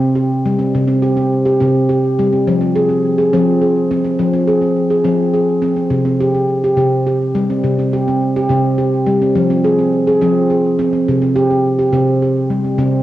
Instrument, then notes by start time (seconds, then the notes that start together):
handpan
Already playing: C3 C4
0.15 G4
0.46 G3
0.59 C4
0.75 C3
0.88 C4
1.02 G4
1.17 C4
1.45 G4
1.60 C3 C4
1.89 G4
2.19 G3
2.33 C4
2.47 F3
2.61 C4
2.76 G#4
2.89 C4
3.18 G#4
3.33 F3 C4
3.62 G#4
3.91 C4
4.04 C4
4.19 F3
4.33 C4
4.47 G#4
4.62 C4
4.90 G#4
5.04 F3 C4
5.34 G#4
5.62 C4
5.76 C4
5.90 C3
6.05 C4
6.20 G4
6.35 C4
6.64 G4
6.77 C3 C4
7.07 G4
7.35 G3
7.50 C4
7.64 C3
7.79 C4
7.93 G4
8.08 C4
8.36 G4
8.49 C3 C4
8.78 G4
9.07 G3
9.22 C4
9.35 F3
9.50 C4
9.64 G#4
9.79 C4
10.07 G#4
10.21 F3 C4
10.50 G#4
10.79 C4
10.93 C4
11.08 C3
11.22 C4
11.36 G4
11.51 C4
11.79 G4
11.93 C3 C4
12.22 G4
12.50 G3
12.64 C4
12.78 C3 C4